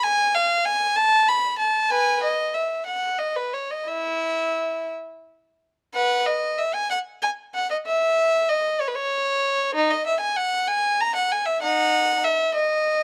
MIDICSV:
0, 0, Header, 1, 2, 480
1, 0, Start_track
1, 0, Tempo, 626959
1, 17, Time_signature, 6, 3, 24, 8
1, 1457, Tempo, 652884
1, 2417, Tempo, 682594
1, 4337, Tempo, 633580
1, 8177, Tempo, 616016
1, 9754, End_track
2, 0, Start_track
2, 0, Title_t, "Violin"
2, 0, Program_c, 0, 40
2, 27, Note_on_c, 0, 80, 91
2, 263, Note_off_c, 0, 80, 0
2, 267, Note_on_c, 0, 77, 80
2, 498, Note_on_c, 0, 80, 84
2, 503, Note_off_c, 0, 77, 0
2, 735, Note_on_c, 0, 81, 94
2, 738, Note_off_c, 0, 80, 0
2, 974, Note_off_c, 0, 81, 0
2, 984, Note_on_c, 0, 83, 84
2, 1215, Note_on_c, 0, 81, 75
2, 1218, Note_off_c, 0, 83, 0
2, 1452, Note_off_c, 0, 81, 0
2, 1458, Note_on_c, 0, 80, 91
2, 1460, Note_on_c, 0, 71, 71
2, 1680, Note_off_c, 0, 71, 0
2, 1695, Note_off_c, 0, 80, 0
2, 1698, Note_on_c, 0, 75, 76
2, 1927, Note_on_c, 0, 76, 61
2, 1931, Note_off_c, 0, 75, 0
2, 2161, Note_on_c, 0, 78, 67
2, 2170, Note_off_c, 0, 76, 0
2, 2400, Note_on_c, 0, 75, 68
2, 2405, Note_off_c, 0, 78, 0
2, 2524, Note_on_c, 0, 71, 61
2, 2526, Note_off_c, 0, 75, 0
2, 2647, Note_off_c, 0, 71, 0
2, 2649, Note_on_c, 0, 73, 53
2, 2767, Note_on_c, 0, 75, 57
2, 2770, Note_off_c, 0, 73, 0
2, 2888, Note_on_c, 0, 76, 65
2, 2890, Note_on_c, 0, 64, 53
2, 2891, Note_off_c, 0, 75, 0
2, 3587, Note_off_c, 0, 64, 0
2, 3614, Note_off_c, 0, 76, 0
2, 4343, Note_on_c, 0, 71, 66
2, 4343, Note_on_c, 0, 78, 79
2, 4564, Note_off_c, 0, 71, 0
2, 4564, Note_off_c, 0, 78, 0
2, 4579, Note_on_c, 0, 75, 70
2, 4820, Note_off_c, 0, 75, 0
2, 4824, Note_on_c, 0, 76, 65
2, 4943, Note_off_c, 0, 76, 0
2, 4944, Note_on_c, 0, 80, 70
2, 5063, Note_off_c, 0, 80, 0
2, 5068, Note_on_c, 0, 78, 71
2, 5129, Note_off_c, 0, 78, 0
2, 5310, Note_on_c, 0, 80, 79
2, 5371, Note_off_c, 0, 80, 0
2, 5553, Note_on_c, 0, 78, 63
2, 5665, Note_off_c, 0, 78, 0
2, 5676, Note_on_c, 0, 75, 67
2, 5721, Note_off_c, 0, 75, 0
2, 5796, Note_on_c, 0, 76, 84
2, 6259, Note_off_c, 0, 76, 0
2, 6272, Note_on_c, 0, 75, 73
2, 6506, Note_off_c, 0, 75, 0
2, 6507, Note_on_c, 0, 73, 67
2, 6557, Note_off_c, 0, 73, 0
2, 6564, Note_on_c, 0, 71, 56
2, 6612, Note_off_c, 0, 71, 0
2, 6617, Note_on_c, 0, 73, 76
2, 7223, Note_on_c, 0, 63, 85
2, 7226, Note_off_c, 0, 73, 0
2, 7339, Note_off_c, 0, 63, 0
2, 7341, Note_on_c, 0, 75, 71
2, 7459, Note_off_c, 0, 75, 0
2, 7464, Note_on_c, 0, 76, 69
2, 7566, Note_on_c, 0, 80, 67
2, 7578, Note_off_c, 0, 76, 0
2, 7688, Note_off_c, 0, 80, 0
2, 7690, Note_on_c, 0, 78, 71
2, 7927, Note_on_c, 0, 80, 80
2, 7932, Note_off_c, 0, 78, 0
2, 8169, Note_off_c, 0, 80, 0
2, 8179, Note_on_c, 0, 82, 81
2, 8292, Note_on_c, 0, 78, 70
2, 8297, Note_off_c, 0, 82, 0
2, 8412, Note_off_c, 0, 78, 0
2, 8417, Note_on_c, 0, 80, 69
2, 8530, Note_on_c, 0, 76, 70
2, 8537, Note_off_c, 0, 80, 0
2, 8653, Note_off_c, 0, 76, 0
2, 8655, Note_on_c, 0, 63, 68
2, 8655, Note_on_c, 0, 78, 86
2, 9102, Note_off_c, 0, 63, 0
2, 9124, Note_off_c, 0, 78, 0
2, 9139, Note_on_c, 0, 76, 77
2, 9375, Note_off_c, 0, 76, 0
2, 9375, Note_on_c, 0, 75, 80
2, 9754, Note_off_c, 0, 75, 0
2, 9754, End_track
0, 0, End_of_file